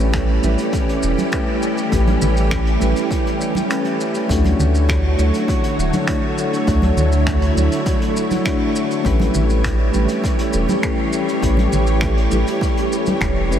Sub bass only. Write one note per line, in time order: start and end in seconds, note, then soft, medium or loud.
0.00 0.39 A1 medium
0.43 0.56 A1 medium
1.03 1.15 E1 medium
1.92 2.17 A1 loud
2.22 2.77 A1 medium
2.81 2.94 A1 medium
4.30 4.54 D2 loud
4.60 5.15 D2 medium
5.19 5.31 D2 loud
5.78 5.91 D1 medium
6.67 6.92 D2 loud
6.97 7.52 D2 medium
7.56 7.69 D2 medium
9.05 9.29 A1 loud
9.35 9.90 A1 medium
9.94 10.07 A1 medium
10.54 10.66 E1 medium
11.42 11.67 A1 medium
11.73 12.28 A1 medium
12.31 12.44 A1 medium
13.21 13.52 E1 medium
13.51 13.59 G1 loud